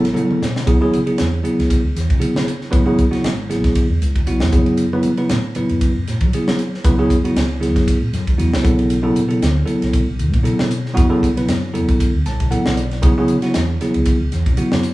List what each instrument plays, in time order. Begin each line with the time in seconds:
Already playing: fretless electric bass A1
0.05 snare, ride
0.13 tine electric piano C#3 F#3 B3 E4 A4, hi-hat pedal, high tom
0.31 mid tom
0.42 fretless electric bass B2, snare, hi-hat pedal
0.55 tine electric piano E4 B4, snare
0.67 fretless electric bass C#2, tine electric piano C#3 F#3 B3 E4 G#4, kick, hi-hat pedal, ride
0.81 tine electric piano C#3 F#3 B3 E4 G#4
0.92 fretless electric bass C#3, hi-hat pedal, ride
1.06 tine electric piano C#3 F#3 B3 E4 G#4, ride
1.18 fretless electric bass E2, snare, hi-hat pedal, ride
1.33 tine electric piano E4 G#4
1.44 tine electric piano C#3 F#3 B3 E4 G#4, hi-hat pedal, ride
1.59 fretless electric bass C#2, snare, ride
1.70 kick, hi-hat pedal, ride
1.83 fretless electric bass C#2
1.94 fretless electric bass E2, tine electric piano E4 G#4, snare, hi-hat pedal, ride
2.09 fretless electric bass C#3, tine electric piano E4 G#4, kick, ride
2.19 tine electric piano C#3 F#3 B3 E4 G#4, hi-hat pedal, ride
2.35 fretless electric bass C#3, snare
2.48 hi-hat pedal, ride
2.60 tine electric piano E4 G#4, snare
2.71 fretless electric bass G#1, tine electric piano C#3 F#3 B3 E4 B4, kick, hi-hat pedal, ride
2.86 tine electric piano C#3 F#3 B3 E4 G#4
2.98 fretless electric bass C#2, kick, hi-hat pedal, ride
3.10 tine electric piano C#3 F#3 B3 E4 F#4, snare, ride
3.24 fretless electric bass G#1, snare, hi-hat pedal, ride
3.38 tine electric piano E4 B4
3.50 tine electric piano C#3 F#3 B3 E4 G#4, snare, hi-hat pedal, ride
3.64 fretless electric bass C#2, kick, snare, ride
3.75 kick, hi-hat pedal, ride
3.89 fretless electric bass E2
4.01 fretless electric bass C#2, tine electric piano E4 B4, hi-hat pedal, ride
4.14 tine electric piano E4 F#4, kick, ride
4.27 fretless electric bass B1, tine electric piano C#3 F#3 B3 E4 F#4, hi-hat pedal, ride
4.40 fretless electric bass E2, snare
4.52 fretless electric bass F#2, tine electric piano C#3 F#3 B3 E4 G#4, kick, hi-hat pedal, ride
4.66 ride
4.77 hi-hat pedal, ride
4.93 tine electric piano C#3 F#3 B3 E4 B4
5.03 fretless electric bass F#3, hi-hat pedal, ride
5.17 tine electric piano C#3 F#3 B3 E4 B4, ride
5.29 fretless electric bass A2, snare, hi-hat pedal, ride
5.44 tine electric piano E4 B4
5.55 tine electric piano C#3 F#3 B3 E4 B4, muted fretless electric bass stroke, hi-hat pedal, ride
5.69 fretless electric bass F#2, ride
5.81 kick, hi-hat pedal, ride
5.95 fretless electric bass F#2
6.07 fretless electric bass A2, tine electric piano E4 F#4, snare, hi-hat pedal, ride
6.21 fretless electric bass F#3, tine electric piano E4 G#4, kick, ride
6.33 tine electric piano C#3 F#3 B3 E4 G#4, hi-hat pedal, ride
6.48 fretless electric bass F#3, snare
6.59 hi-hat pedal, ride
6.74 tine electric piano E4 B4, snare
6.84 fretless electric bass C#2, tine electric piano C#3 F#3 B3 E4 B4, kick, hi-hat pedal, ride
6.98 tine electric piano C#3 F#3 B3 E4 G#4
7.10 fretless electric bass F#2, kick, hi-hat pedal, ride
7.24 tine electric piano C#3 F#3 B3 E4 F#4, ride
7.35 fretless electric bass C#2, snare, hi-hat pedal, ride
7.51 tine electric piano E4 F#4
7.61 tine electric piano C#3 F#3 B3 E4 G#4, snare, hi-hat pedal, ride
7.76 fretless electric bass F#2, kick, snare, ride
7.88 kick, hi-hat pedal, ride
8.01 fretless electric bass A2
8.13 fretless electric bass F#2, tine electric piano E4 A4, snare, hi-hat pedal, ride
8.27 tine electric piano E4 G#4, kick, ride
8.38 fretless electric bass E2, tine electric piano C#3 F#3 B3 E4 F#4, hi-hat pedal, ride
8.53 fretless electric bass C2, snare
8.63 fretless electric bass B1, tine electric piano C#3 F#3 B3 E4 A4, kick, hi-hat pedal, ride
8.79 ride
8.90 hi-hat pedal, ride
9.02 tine electric piano C#3 F#3 B3 E4 A4
9.16 fretless electric bass B2, hi-hat pedal, ride
9.28 tine electric piano C#3 F#3 B3 E4 A4, ride
9.42 fretless electric bass D2, snare, hi-hat pedal, ride
9.55 tine electric piano E4 A4
9.66 tine electric piano C#3 F#3 B3 E4 A4, hi-hat pedal, ride
9.82 fretless electric bass B1, snare, ride
9.93 kick, hi-hat pedal, ride
10.07 fretless electric bass B1
10.18 fretless electric bass D2, tine electric piano E4 A4, hi-hat pedal, ride
10.31 fretless electric bass B2, tine electric piano E4 B4, kick, ride
10.43 tine electric piano C#3 F#3 B3 E4 A4, hi-hat pedal, ride
10.59 fretless electric bass B2, snare
10.71 hi-hat pedal, ride
10.84 tine electric piano E4 G#4, snare
10.94 fretless electric bass F#2, tine electric piano C#3 F#3 B3 E4 F#4, kick, hi-hat pedal, ride
11.09 tine electric piano C#3 F#3 B3 E4 A4
11.23 fretless electric bass B1, kick, hi-hat pedal, ride
11.37 tine electric piano C#3 F#3 B3 E4 B4, ride
11.48 fretless electric bass F#2, snare, hi-hat pedal, ride
11.63 tine electric piano E4 F#4
11.73 tine electric piano C#3 F#3 B3 E4 A4, hi-hat pedal, ride
11.88 fretless electric bass B1, kick, ride
12.00 kick, hi-hat pedal, ride
12.14 fretless electric bass D2
12.25 fretless electric bass B1, tine electric piano E4 A4 A5, snare, hi-hat pedal, ride
12.39 tine electric piano E4 G#4, kick, ride
12.51 fretless electric bass A1, tine electric piano C#3 F#3 B3 E4 A4 F#5, hi-hat pedal, ride
12.66 fretless electric bass B1, snare
12.77 tine electric piano D5, hi-hat pedal, ride
12.91 tine electric piano E4 B4, snare, ride
13.02 fretless electric bass C#2, tine electric piano C#3 F#3 B3 E4 G#4, kick, hi-hat pedal, ride
13.18 tine electric piano C#3 F#3 B3 E4 G#4
13.28 fretless electric bass C#3, hi-hat pedal, ride
13.42 tine electric piano C#3 F#3 B3 E4 F#4, snare, ride
13.54 fretless electric bass E2, snare, hi-hat pedal, ride
13.69 tine electric piano E4 F#4
13.81 tine electric piano C#3 F#3 B3 E4 G#4, muted fretless electric bass stroke, snare, hi-hat pedal, ride
13.94 fretless electric bass C#2, ride
14.05 kick, hi-hat pedal, ride
14.20 fretless electric bass C#2
14.32 fretless electric bass E2, tine electric piano E4 G#4, snare, hi-hat pedal, ride
14.46 fretless electric bass C#3, tine electric piano E4 F#4, kick, ride
14.57 tine electric piano C#3 F#3 B3 E4 F#4, hi-hat pedal, ride
14.72 fretless electric bass F#2, snare
14.83 hi-hat pedal, ride